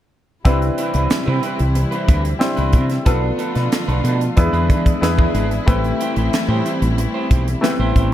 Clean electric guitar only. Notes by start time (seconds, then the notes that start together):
0.45 C4 E4 B4
0.62 muted clean electric guitar stroke
0.78 C4 E4 B4
0.94 C4 E4 B4
1.10 muted clean electric guitar stroke
1.26 C4 E4 B4
1.43 C4 E4 B4
1.59 muted clean electric guitar stroke
1.75 muted clean electric guitar stroke
1.91 C4 E4 B4
2.07 C4 E4 B4
2.24 muted clean electric guitar stroke
2.40 muted clean electric guitar stroke
2.56 C4 E4 B4
2.73 C4 E4 B4
2.90 muted clean electric guitar stroke
3.05 D4 A4 B4
3.22 muted clean electric guitar stroke
3.38 D4 A4 B4
3.55 D4 A4 B4
3.72 muted clean electric guitar stroke
3.88 D4 A4 B4
4.04 D4 A4 B4
4.20 muted clean electric guitar stroke
4.36 muted clean electric guitar stroke
4.53 D4 G#4 B4
4.69 D4 G#4 B4
4.86 muted clean electric guitar stroke
5.02 muted clean electric guitar stroke
5.18 D4 G#4 B4
5.34 D4 G#4 B4
5.51 muted clean electric guitar stroke
5.67 E4 G4 C5
5.84 muted clean electric guitar stroke
6.00 E4 G4 C5
6.16 E4 G4 C5
6.33 muted clean electric guitar stroke
6.49 E4 G4 C5
6.65 E4 G4 C5
6.82 muted clean electric guitar stroke
6.98 muted clean electric guitar stroke
7.14 E4 G4 C5
7.31 E4 G4 C5
7.47 muted clean electric guitar stroke
7.64 muted clean electric guitar stroke
7.80 E4 G4 C5
7.96 E4 G4 C5